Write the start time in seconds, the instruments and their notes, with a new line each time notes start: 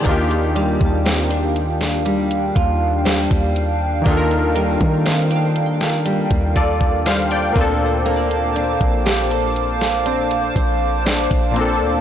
Already playing: nylon-string guitar G#3 D4 G4, synth keys G#4
0.02 808-style bass D#2, synth keys D#3 A#3, nylon-string guitar D#3, analog synth pad D4 F5, closed hi-hat
0.06 synth keys D4 F4, analog synth pad G5, kick
0.11 synth keys G4
0.31 closed hi-hat
0.55 nylon-string guitar G3, synth pluck F5, closed hi-hat
0.81 808-style bass D#2, kick, closed hi-hat
0.86 synth pluck A5
1.05 nylon-string guitar C4, snare, closed hi-hat
1.15 synth pluck A#5
1.30 nylon-string guitar D4, closed hi-hat
1.56 closed hi-hat
1.81 snare, closed hi-hat
2.05 nylon-string guitar G3, closed hi-hat
2.31 closed hi-hat
2.55 808-style bass D#2, nylon-string guitar F4, kick, closed hi-hat
3.05 nylon-string guitar G3, synth pluck C5, snare, closed hi-hat
3.31 808-style bass D#2, kick, closed hi-hat
3.56 closed hi-hat
4.01 synth keys D#3 A#3, nylon-string guitar D#3
4.06 808-style bass D#2, synth keys D4 F4, kick, closed hi-hat
4.11 synth keys A4
4.17 synth keys A#4
4.31 closed hi-hat
4.55 nylon-string guitar G3, synth pluck A#4, closed hi-hat
4.81 808-style bass D#3, kick, closed hi-hat
5.05 nylon-string guitar C4, synth pluck C5, snare, closed hi-hat
5.31 nylon-string guitar D4, closed hi-hat
5.36 synth pluck F5
5.56 closed hi-hat
5.66 synth pluck G5
5.81 snare, closed hi-hat
6.05 nylon-string guitar G3, closed hi-hat
6.31 808-style bass D#2, kick, closed hi-hat
6.56 nylon-string guitar F4, synth pluck F4, synth keys A4 D5, kick, closed hi-hat
6.81 kick
7.06 nylon-string guitar G3, synth keys C5 F5, snare, closed hi-hat
7.31 synth keys D5 G5, closed hi-hat
7.51 synth keys A#2 A#3
7.56 808-style bass D2, nylon-string guitar A#3, synth keys C4 D4, synth pluck F4, analog synth pad C5 F5 A5 D6, kick, open hi-hat
7.61 synth keys A4
7.86 synth pluck C5
8.06 nylon-string guitar A#3, closed hi-hat
8.16 synth pluck D5
8.31 closed hi-hat
8.56 nylon-string guitar D4, closed hi-hat
8.81 808-style bass A#1, kick, closed hi-hat
9.06 nylon-string guitar G4, snare, closed hi-hat
9.30 nylon-string guitar A4, closed hi-hat
9.56 closed hi-hat
9.81 snare, closed hi-hat
10.06 synth pluck C4, nylon-string guitar D4, closed hi-hat
10.31 closed hi-hat
10.55 808-style bass A#1, nylon-string guitar C5, kick, closed hi-hat
11.06 nylon-string guitar D4, snare, closed hi-hat
11.31 808-style bass A#1, kick, closed hi-hat
11.51 synth keys A#2 A#3
11.56 synth keys C4 D4, closed hi-hat
11.61 synth keys A4
11.81 808-style bass D2